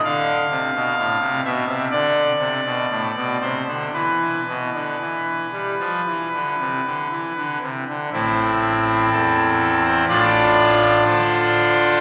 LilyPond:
<<
  \new Staff \with { instrumentName = "Pipe organ" } { \time 4/4 \key a \minor \tempo 4 = 61 << { f''4. e''8 d''4. c''8 | b'2.~ b'8 r8 | a,,4 a'8. c''16 <a,, d''>4 c''4 | } \\ { r1 | r1 | <c' e'>2 <d' f'>2 | } >> }
  \new Staff \with { instrumentName = "Pipe organ" } { \clef bass \time 4/4 \key a \minor d8 c16 b,16 a,16 c16 b,16 c16 d8 c16 b,16 a,16 b,16 c16 d16 | e8 b,16 d16 e8 g16 f16 e16 d16 c16 d16 e16 d16 c16 d16 | a,4 e,4 a,4 d4 | }
>>